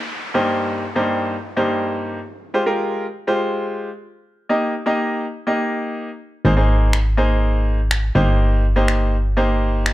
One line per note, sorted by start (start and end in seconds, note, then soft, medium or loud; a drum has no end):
0.00 downlifter medium
0.34 0.83 G2 medium
0.34 0.83 A#3 medium
0.34 0.84 D#4 medium
0.34 0.84 G4 medium
0.34 0.84 C5 medium
0.95 1.34 G2 medium
0.95 1.34 A#3 medium
0.95 1.34 D#4 medium
0.95 1.34 G4 medium
0.95 1.34 C5 medium
1.57 2.18 G2 medium
1.57 2.18 A#3 medium
1.57 2.18 D#4 medium
1.57 2.18 G4 medium
1.57 2.18 C5 medium
2.54 2.62 G#3 medium
2.54 2.62 F4 medium
2.54 2.62 G4 medium
2.54 2.62 C5 medium
2.66 3.04 G#3 medium
2.66 3.04 F4 medium
2.66 3.04 G4 medium
2.66 3.05 A#4 medium
3.27 3.88 G#3 medium
3.27 3.88 F4 medium
3.27 3.88 G4 medium
3.27 3.88 C5 medium
4.49 4.72 A#3 medium
4.49 4.72 D#4 medium
4.49 4.72 G4 medium
4.49 4.72 D#5 medium
4.86 5.24 A#3 medium
4.86 5.24 D#4 medium
4.86 5.24 G4 medium
4.86 5.24 D#5 medium
5.47 6.08 A#3 medium
5.47 6.08 D#4 medium
5.47 6.08 G4 medium
5.47 6.08 D#5 medium
6.45 8.11 G#1 medium
6.45 6.52 A#3 medium
6.45 6.52 D#4 medium
6.45 6.52 G#4 medium
6.45 6.52 C5 medium
6.57 6.95 A#3 medium
6.57 6.95 D#4 medium
6.57 6.95 G#4 medium
6.57 6.95 C5 medium
6.93 finger snap loud
7.17 7.78 A#3 medium
7.17 7.78 D#4 medium
7.17 7.79 G#4 medium
7.17 7.79 C5 medium
7.91 finger snap loud
8.15 9.93 G1 medium
8.15 8.64 A#3 medium
8.15 8.64 D#4 medium
8.15 8.64 G4 medium
8.15 8.64 C5 loud
8.76 9.14 A#3 medium
8.76 9.14 D#4 medium
8.76 9.14 G4 medium
8.76 9.14 C5 medium
8.88 finger snap loud
9.37 9.93 A#3 medium
9.37 9.93 D#4 medium
9.37 9.93 G4 medium
9.37 9.93 C5 medium
9.86 finger snap loud